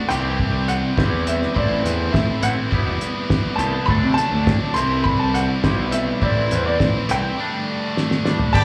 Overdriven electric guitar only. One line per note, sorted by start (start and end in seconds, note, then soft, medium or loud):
0.09 1.54 G3 medium
0.09 1.53 C4 medium
0.09 1.54 E4 medium
0.09 1.55 G4 loud
1.54 2.70 C4 medium
1.54 2.70 E4 medium
1.54 2.71 A4 medium
2.70 3.86 G3 medium
2.70 3.87 B3 medium
2.70 3.87 E4 medium
3.87 4.74 F#3 medium
3.87 4.75 A3 medium
3.87 4.75 D4 loud
4.76 6.20 G3 medium
4.76 6.20 C4 loud
4.76 6.21 E4 loud
6.21 7.36 E3 medium
6.21 7.37 C4 loud
6.21 7.37 E4 loud
7.38 8.52 G3 medium
7.38 8.53 A3 medium
7.38 8.53 D4 loud
8.54 8.64 B3 loud
8.54 8.64 D4 loud
8.54 8.64 G4 loud